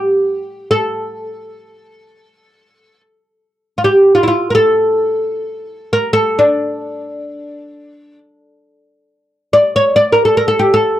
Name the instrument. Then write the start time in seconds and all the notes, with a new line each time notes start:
oud
Already playing: G4
0.71 A4
3.78 F4
3.84 G4
4.15 F4
4.23 E4
4.28 F4
4.50 A#4
4.55 A4
5.93 A#4
6.13 A4
6.39 D4
9.53 D5
9.76 C#5
9.96 D5
10.12 A#4
10.25 A4
10.37 A#4
10.48 A4
10.59 G4
10.74 A4